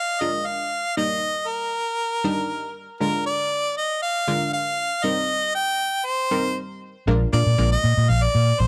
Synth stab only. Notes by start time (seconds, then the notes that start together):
0.21 G#3 D4 F4 A#4
0.97 G3 A#3 D#4 A#4
2.24 G3 D4 D#4 A#4
3.00 D3 G#3 D4 F4 A#4
4.28 D3 G#3 D4 F4 A#4
5.04 G3 C4 D#4 A#4
6.31 G3 C4 D#4 A#4
7.07 G#3 A#3 D4 F4 A#4
7.33 G#3 A#3 D4 F4 A#4
7.58 D3 G#3 A#3 F4 A#4